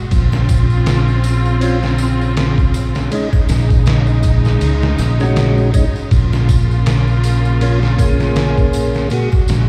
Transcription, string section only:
0.12 6.08 C#3 medium
0.12 3.09 C4 medium
0.12 3.09 F4 medium
3.11 6.08 G#3 medium
3.11 6.08 D#4 medium
6.12 9.09 C#3 medium
6.12 9.09 A#3 medium
6.12 9.09 F4 medium
9.11 9.69 A#2 medium
9.11 9.69 G#3 medium
9.11 9.69 F#4 medium

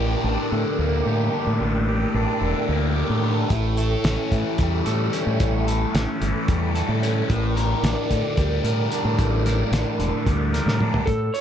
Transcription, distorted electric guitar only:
0.00 1.07 A2 medium
0.00 1.06 G4 medium
0.24 1.32 D4 medium
0.52 1.88 D3 medium
0.79 2.15 A#3 medium
1.07 1.88 G4 medium
1.33 2.14 D4 medium
1.60 2.96 A2 medium
1.88 2.95 G4 medium
2.15 3.22 D4 medium
2.41 3.50 D3 medium
2.69 3.51 A#3 medium
2.96 3.53 G4 medium
3.23 3.51 D4 medium
3.50 4.86 A2 medium
3.78 4.85 A4 medium
4.05 5.12 C#4 medium
4.32 5.67 E3 medium
4.59 5.97 G3 medium
4.86 5.66 A4 medium
5.13 5.93 C#4 medium
5.41 6.75 A2 medium
5.68 6.74 A4 medium
5.94 7.01 C#4 medium
6.21 7.29 E3 medium
6.47 7.32 G3 medium
6.75 7.29 A4 medium
7.02 7.29 C#4 medium
7.29 8.64 A2 medium
7.56 8.64 A#4 medium
7.84 8.92 D4 medium
8.10 9.45 D3 medium
8.38 9.72 G3 medium
8.65 9.45 A#4 medium
8.92 9.72 D4 medium
9.18 10.53 A2 medium
9.46 10.52 A#4 medium
9.73 10.80 D4 medium
10.00 11.07 D3 medium
10.26 11.07 G3 medium
10.53 11.07 A#4 medium
10.81 11.07 D4 medium

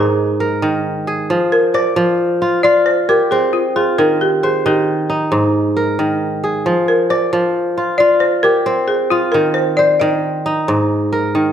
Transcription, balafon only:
0.00 1.03 G#4 medium
1.52 1.75 A#4 medium
1.75 2.66 C5 medium
2.63 2.86 D5 medium
2.86 3.07 C5 medium
3.09 3.32 A#4 medium
3.31 3.54 G#4 medium
3.53 3.76 F4 medium
3.76 3.96 G#4 medium
3.98 4.21 A#4 medium
4.21 4.44 G4 medium
4.43 4.66 G#4 medium
4.66 5.51 G4 medium
6.88 7.11 A#4 medium
7.10 7.96 C5 medium
7.98 8.08 D5 medium
8.20 8.44 C5 medium
8.43 8.90 A#4 medium
8.88 8.98 G#4 medium
9.10 9.21 F4 medium
9.32 9.53 A#4 medium
9.54 9.78 C5 medium
9.77 10.01 D5 medium
10.00 11.52 D#5 medium

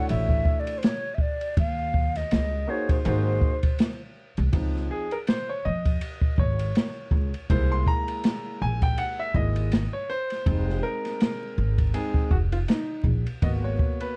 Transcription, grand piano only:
0.00 0.76 A3 medium
0.00 0.76 D4 medium
0.00 0.77 E4 medium
0.00 0.77 F#4 medium
0.00 0.77 C#5 medium
2.67 2.95 A#3 medium
2.67 2.96 D#4 medium
2.67 2.96 F#4 medium
2.67 2.96 G#4 medium
2.67 2.96 C5 medium
3.05 3.51 A#3 medium
3.05 3.51 D#4 medium
3.05 3.51 F#4 medium
3.05 3.51 G#4 medium
3.05 3.51 C5 medium
4.53 5.04 F3 medium
4.53 5.05 C4 soft
4.53 5.05 D#4 medium
4.91 5.12 G#4 medium
5.12 5.17 A#4 medium
5.28 5.50 C5 medium
5.49 5.65 C#5 medium
5.65 6.41 D#5 medium
6.39 7.53 C#5 medium
7.50 9.33 G#3 medium
7.50 9.34 A#3 medium
7.50 9.34 E4 medium
7.50 7.72 C5 medium
7.72 7.88 C6 loud
7.88 8.63 A#5 loud
8.62 8.83 G#5 medium
8.83 8.99 G5 medium
8.98 9.20 F#5 loud
9.19 9.36 E5 medium
9.35 9.68 G#3 soft
9.35 9.68 A#3 soft
9.35 9.69 E4 medium
9.35 9.89 D#5 loud
9.93 10.10 C#5 medium
10.10 10.86 C5 loud
10.46 11.92 G#3 medium
10.46 11.93 C4 soft
10.46 11.93 D#4 medium
10.83 11.97 A#4 loud
11.94 12.27 G#3 medium
11.94 12.27 C4 soft
11.94 12.28 D#4 medium
11.94 12.32 G#4 medium
12.31 12.36 F#4 medium
12.52 12.57 F4 medium
12.68 13.03 D#4 medium
13.42 14.17 A#3 medium
13.42 14.17 B3 medium
13.42 14.17 F#4 medium
13.42 13.48 D#5 medium
13.64 14.02 C#5 medium
14.01 14.17 B4 medium

